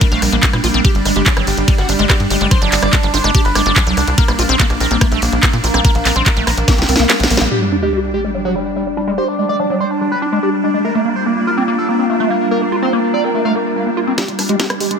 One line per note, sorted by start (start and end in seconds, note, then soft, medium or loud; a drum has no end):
0.00 7.50 G3 medium
0.00 0.08 A3 medium
0.00 7.50 D4 medium
0.00 kick loud
0.00 closed hi-hat medium
0.00 ride medium
0.12 0.19 A#1 loud
0.12 0.21 A3 loud
0.12 0.18 F5 loud
0.12 closed hi-hat soft
0.22 0.29 A#1 loud
0.22 0.29 A#3 medium
0.22 cross-stick soft
0.22 open hi-hat loud
0.32 0.39 A#1 loud
0.32 0.39 A#3 medium
0.32 0.36 A#3 medium
0.32 closed hi-hat soft
0.43 0.49 A#3 medium
0.43 kick loud
0.43 clap loud
0.43 closed hi-hat medium
0.43 ride medium
0.53 0.60 A#2 medium
0.53 0.57 A#3 medium
0.53 cross-stick medium
0.53 closed hi-hat medium
0.64 0.71 A#1 loud
0.64 0.70 A#3 medium
0.64 0.68 F4 medium
0.64 open hi-hat loud
0.74 0.81 A#1 medium
0.74 0.81 A#3 medium
0.74 0.81 C4 loud
0.74 closed hi-hat soft
0.85 0.91 G4 loud
0.85 kick loud
0.85 closed hi-hat medium
0.85 ride medium
0.95 1.02 G1 medium
0.95 1.02 G3 medium
0.95 closed hi-hat medium
1.05 1.12 G1 loud
1.05 1.12 G3 medium
1.05 1.12 G#3 medium
1.05 cross-stick soft
1.05 open hi-hat loud
1.16 1.23 G1 medium
1.16 1.22 G#3 medium
1.16 1.22 G4 loud
1.16 closed hi-hat soft
1.26 1.33 F#3 medium
1.26 1.33 G3 medium
1.26 kick loud
1.26 clap loud
1.26 closed hi-hat medium
1.26 ride medium
1.37 1.44 G1 medium
1.37 1.46 F#3 loud
1.37 1.43 G3 medium
1.37 cross-stick medium
1.37 closed hi-hat medium
1.47 1.54 G1 loud
1.47 1.51 G3 medium
1.47 1.54 G4 loud
1.47 open hi-hat medium
1.57 1.64 G1 loud
1.57 1.64 G3 medium
1.57 closed hi-hat medium
1.68 1.74 G3 medium
1.68 kick loud
1.68 closed hi-hat medium
1.68 ride medium
1.78 1.85 G1 medium
1.78 1.82 G3 medium
1.78 1.85 F#4 loud
1.78 cross-stick soft
1.78 closed hi-hat soft
1.89 1.96 G1 loud
1.89 1.95 G3 medium
1.89 1.93 D4 loud
1.89 open hi-hat loud
1.99 2.06 G1 loud
1.99 2.06 G3 medium
1.99 2.06 G#3 loud
1.99 closed hi-hat medium
2.10 2.16 G3 medium
2.10 2.16 G4 loud
2.10 kick loud
2.10 cross-stick medium
2.10 clap loud
2.10 closed hi-hat medium
2.10 ride medium
2.20 2.27 G2 medium
2.20 closed hi-hat medium
2.30 2.37 G1 loud
2.30 2.37 G3 medium
2.30 2.37 G#3 medium
2.30 open hi-hat loud
2.41 2.48 G1 medium
2.41 2.47 G3 medium
2.41 2.47 G#3 medium
2.41 closed hi-hat medium
2.51 2.58 F#3 medium
2.51 2.58 C5 loud
2.51 kick loud
2.51 cross-stick soft
2.51 closed hi-hat medium
2.51 ride medium
2.62 2.69 G1 medium
2.62 2.71 F#3 loud
2.62 2.68 D4 medium
2.62 closed hi-hat medium
2.72 2.79 G1 medium
2.72 2.76 G3 medium
2.72 2.79 D4 medium
2.72 clap medium
2.72 open hi-hat loud
2.83 2.89 G1 medium
2.83 2.89 D5 medium
2.83 cross-stick medium
2.83 closed hi-hat medium
2.93 2.99 G3 medium
2.93 2.99 D4 medium
2.93 kick loud
2.93 clap loud
2.93 closed hi-hat medium
2.93 ride medium
3.03 3.10 G1 medium
3.03 3.07 G3 medium
3.03 3.10 D4 medium
3.03 closed hi-hat medium
3.14 3.21 G1 loud
3.14 3.18 D4 loud
3.14 3.20 C5 medium
3.14 open hi-hat medium
3.24 3.31 G1 loud
3.24 3.31 G#3 loud
3.24 3.31 D4 medium
3.24 cross-stick soft
3.24 closed hi-hat medium
3.35 3.41 D4 medium
3.35 3.41 G4 loud
3.35 kick loud
3.35 closed hi-hat medium
3.35 ride medium
3.45 3.52 G1 medium
3.45 3.52 B4 loud
3.45 closed hi-hat soft
3.55 3.62 G1 loud
3.55 3.62 G#3 medium
3.55 3.62 D4 medium
3.55 cross-stick medium
3.55 open hi-hat loud
3.66 3.73 G1 loud
3.66 3.72 G#3 medium
3.66 3.72 D4 medium
3.66 closed hi-hat medium
3.76 3.83 F#3 medium
3.76 3.83 D4 medium
3.76 kick loud
3.76 clap loud
3.76 closed hi-hat medium
3.76 ride medium
3.87 3.94 C2 medium
3.87 3.96 F#3 loud
3.87 closed hi-hat medium
3.97 4.04 C2 loud
3.97 4.01 G3 medium
3.97 4.04 D4 medium
3.97 cross-stick soft
3.97 open hi-hat medium
4.07 4.14 C2 medium
4.07 4.14 D4 medium
4.07 closed hi-hat medium
4.18 4.24 A#3 medium
4.18 4.24 A#4 loud
4.18 kick loud
4.18 closed hi-hat medium
4.18 ride medium
4.28 4.35 A#1 medium
4.28 4.32 A#3 medium
4.28 4.35 A#3 medium
4.28 cross-stick medium
4.28 closed hi-hat medium
4.39 4.46 A#1 loud
4.39 4.45 A#3 medium
4.39 4.43 F4 loud
4.39 open hi-hat loud
4.49 4.56 A#1 medium
4.49 4.56 C4 loud
4.49 4.56 C5 loud
4.49 closed hi-hat medium
4.60 4.66 A#3 medium
4.60 4.66 A#3 loud
4.60 kick loud
4.60 clap loud
4.60 closed hi-hat medium
4.60 ride medium
4.70 4.77 A#1 medium
4.70 4.77 A#3 medium
4.70 cross-stick soft
4.70 closed hi-hat medium
4.80 4.87 A#1 loud
4.80 4.87 C4 medium
4.80 4.87 A#4 medium
4.80 open hi-hat medium
4.91 4.98 A#1 loud
4.91 4.97 A#3 medium
4.91 4.97 C4 medium
4.91 closed hi-hat medium
5.01 5.08 A3 medium
5.01 5.08 A#3 medium
5.01 kick loud
5.01 cross-stick medium
5.01 closed hi-hat medium
5.01 ride medium
5.12 5.19 A#1 medium
5.12 5.21 A3 loud
5.12 5.18 A4 loud
5.12 closed hi-hat medium
5.22 5.29 A#1 loud
5.22 5.29 A#3 medium
5.22 5.26 A#3 medium
5.22 open hi-hat loud
5.32 5.39 A#1 loud
5.32 5.39 A#3 medium
5.32 closed hi-hat medium
5.43 5.49 A#3 medium
5.43 kick loud
5.43 cross-stick soft
5.43 clap loud
5.43 closed hi-hat medium
5.43 ride medium
5.53 5.60 A#2 medium
5.53 5.57 A#3 medium
5.53 closed hi-hat medium
5.64 5.71 A#1 loud
5.64 5.70 A#3 medium
5.64 5.68 F4 medium
5.64 open hi-hat medium
5.74 5.81 A#1 medium
5.74 5.81 A#3 medium
5.74 5.81 C4 loud
5.74 cross-stick medium
5.74 closed hi-hat medium
5.84 5.91 A#3 loud
5.84 5.91 A#4 loud
5.84 kick loud
5.84 closed hi-hat medium
5.84 ride medium
5.95 6.02 A#1 medium
5.95 6.02 A#3 medium
5.95 closed hi-hat medium
6.05 6.12 A#1 loud
6.05 6.12 A#3 medium
6.05 6.12 C4 medium
6.05 clap medium
6.05 open hi-hat loud
6.16 6.23 A#1 medium
6.16 6.22 C4 medium
6.16 6.22 C5 medium
6.16 cross-stick soft
6.16 closed hi-hat medium
6.26 6.33 A3 medium
6.26 6.33 A#3 medium
6.26 kick loud
6.26 clap loud
6.26 closed hi-hat medium
6.26 ride medium
6.37 6.44 A#1 medium
6.37 6.46 A3 loud
6.37 6.43 A#3 medium
6.37 closed hi-hat medium
6.47 6.54 A#1 loud
6.47 6.51 A#3 medium
6.47 6.54 A#4 medium
6.47 cross-stick medium
6.47 open hi-hat loud
6.57 6.64 A#1 loud
6.57 6.64 A#3 medium
6.57 closed hi-hat medium
6.68 6.74 A#3 medium
6.68 kick loud
6.68 snare medium
6.68 closed hi-hat medium
6.68 ride medium
6.78 6.85 C2 medium
6.78 6.82 A#3 medium
6.78 6.85 G4 loud
6.78 snare medium
6.78 closed hi-hat medium
6.89 6.96 C2 loud
6.89 6.95 A#3 medium
6.89 6.95 C4 loud
6.89 open hi-hat loud
6.96 7.06 C2 loud
6.96 7.06 A#3 loud
6.96 7.06 A#3 medium
6.96 snare medium
6.96 closed hi-hat medium
7.10 7.16 A#3 medium
7.10 snare medium
7.10 clap loud
7.10 closed hi-hat medium
7.10 ride medium
7.20 7.27 A#1 medium
7.20 7.27 D4 medium
7.20 snare loud
7.20 closed hi-hat medium
7.30 7.37 A#1 loud
7.30 7.37 A#3 medium
7.30 open hi-hat medium
7.37 7.48 A#1 medium
7.37 7.47 A#3 medium
7.37 7.45 A#3 loud
7.37 snare loud
7.37 closed hi-hat medium
7.51 10.85 G3 medium
7.51 14.17 G3 medium
7.51 7.58 G3 medium
7.51 14.17 D4 medium
7.51 12.18 D4 medium
7.51 7.58 G4 medium
7.51 sub drop medium
7.62 7.66 G3 medium
7.62 7.68 G3 medium
7.69 7.79 G3 medium
7.69 7.76 D4 loud
7.69 12.18 G5 medium
7.82 7.89 G#3 loud
7.82 7.89 G4 medium
7.93 7.99 G3 medium
7.93 7.99 G4 loud
7.97 12.18 D5 medium
8.03 8.10 G3 medium
8.14 8.20 G#3 medium
8.14 8.20 G4 medium
8.24 8.31 G3 medium
8.24 8.31 G#3 medium
8.35 8.41 F#3 medium
8.35 8.41 G3 medium
8.45 8.55 F#3 loud
8.45 8.52 F#4 medium
8.55 8.62 G3 medium
8.55 8.59 G3 medium
8.66 8.72 G3 medium
8.76 8.83 G3 medium
8.87 8.91 G3 medium
8.97 9.04 G3 medium
8.97 9.01 D4 loud
9.07 9.14 G3 medium
9.07 9.14 G#3 medium
9.18 9.24 G4 loud
9.18 9.24 C5 loud
9.28 9.35 D4 medium
9.39 9.45 G#3 medium
9.39 9.45 D4 medium
9.49 9.56 G#3 medium
9.49 9.56 D5 loud
9.60 9.66 F#3 medium
9.60 9.66 D4 medium
9.70 9.80 F#3 loud
9.70 9.77 D4 medium
9.80 9.84 G3 medium
9.80 9.87 C5 medium
9.91 9.97 D4 medium
10.01 10.08 G3 medium
10.01 10.08 D4 medium
10.12 10.16 G3 medium
10.12 10.18 B4 medium
10.22 10.26 D4 loud
10.22 10.29 D4 medium
10.32 10.39 G#3 loud
10.32 10.39 D4 medium
10.43 10.49 D4 medium
10.43 10.49 G4 loud
10.64 10.70 G#3 medium
10.64 10.70 D4 medium
10.74 10.81 G#3 medium
10.74 10.81 D4 medium
10.85 10.91 A3 medium
10.85 14.18 A#3 medium
10.85 10.91 A#4 loud
10.95 11.05 A3 loud
10.95 11.02 A#3 medium
10.95 14.18 F4 medium
11.05 11.09 A#3 medium
11.05 11.12 A#3 medium
11.10 14.18 F5 medium
11.16 11.22 C5 medium
11.21 14.18 A#5 medium
11.26 11.33 A#3 medium
11.37 11.41 A#3 medium
11.37 11.43 A#3 medium
11.47 11.51 F4 loud
11.47 11.54 A#4 medium
11.57 11.64 A#3 medium
11.57 11.64 C4 loud
11.68 11.74 A#3 loud
11.68 11.74 A#3 medium
11.78 11.85 A4 medium
11.89 11.95 A#3 medium
11.89 11.95 C4 medium
11.99 12.06 A#3 medium
11.99 12.06 C4 medium
12.10 12.16 A3 medium
12.10 12.16 A#3 medium
12.20 12.30 A3 loud
12.30 12.37 A#3 medium
12.30 12.34 A#3 medium
12.41 12.47 A#3 medium
12.51 12.58 A#3 medium
12.51 12.58 A#4 loud
12.62 12.66 A#3 medium
12.62 12.68 A#3 medium
12.72 12.79 A#3 medium
12.72 12.76 F4 medium
12.82 12.89 C4 loud
12.82 12.89 C5 medium
12.93 12.99 A#3 medium
12.93 12.99 A#3 loud
13.03 13.10 A#3 medium
13.14 13.20 C4 medium
13.14 13.20 D5 medium
13.24 13.31 A#3 medium
13.24 13.31 C4 medium
13.35 13.41 A3 medium
13.35 13.41 A#3 medium
13.45 13.55 A3 loud
13.45 13.52 F5 medium
13.55 13.59 A#3 medium
13.55 13.62 A#3 medium
13.66 13.72 A#3 medium
13.76 13.83 A#3 medium
13.87 13.91 A#3 medium
13.97 14.04 A#3 medium
13.97 14.01 F4 medium
14.07 14.14 A#3 medium
14.07 14.14 C4 loud
14.18 14.24 G3 medium
14.18 14.99 G3 medium
14.18 14.99 D4 medium
14.18 14.24 G4 loud
14.18 kick loud
14.18 snare soft
14.18 closed hi-hat medium
14.18 riser medium
14.27 14.32 G3 medium
14.27 14.35 G3 medium
14.27 14.99 G4 medium
14.27 14.99 D6 medium
14.27 closed hi-hat medium
14.39 14.45 G3 medium
14.39 14.43 D4 loud
14.39 cross-stick soft
14.39 open hi-hat loud
14.49 14.56 G#3 loud
14.49 14.56 G4 medium
14.49 closed hi-hat medium
14.55 14.99 D5 medium
14.60 14.66 G3 medium
14.60 14.66 G4 loud
14.60 kick loud
14.60 snare medium
14.60 closed hi-hat medium
14.70 14.77 G3 medium
14.70 cross-stick medium
14.70 closed hi-hat medium
14.80 14.87 G#3 medium
14.80 14.87 G4 medium
14.80 open hi-hat medium
14.91 14.97 G3 medium
14.91 14.97 G#3 medium
14.91 closed hi-hat medium